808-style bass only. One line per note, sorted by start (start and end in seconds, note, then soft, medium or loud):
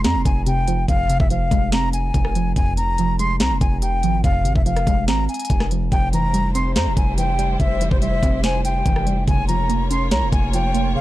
0.05 0.17 F2 loud
0.15 0.25 F1 loud
0.25 0.86 F1 loud
0.88 1.19 F1 loud
1.20 1.50 F1 loud
1.51 2.12 F1 loud
2.14 2.55 F1 loud
2.56 3.42 F1 loud
3.40 3.52 C2 loud
3.51 3.61 F1 loud
3.61 4.05 F1 loud
4.03 4.23 G#1 loud
4.24 4.47 F1 loud
4.45 4.55 G#1 loud
4.56 4.86 F1 loud
4.87 5.10 F1 loud
5.08 5.28 G#1 loud
5.50 5.90 F1 loud
5.92 6.77 F1 loud
6.76 6.88 F2 loud
6.86 6.96 F1 loud
6.97 7.57 F1 loud
7.60 7.90 F1 loud
7.91 8.21 F1 loud
8.23 8.83 F1 loud
8.86 9.26 F1 loud
9.28 10.13 F1 loud
10.12 10.24 C2 loud
10.22 10.32 F1 loud
10.32 10.95 F1 loud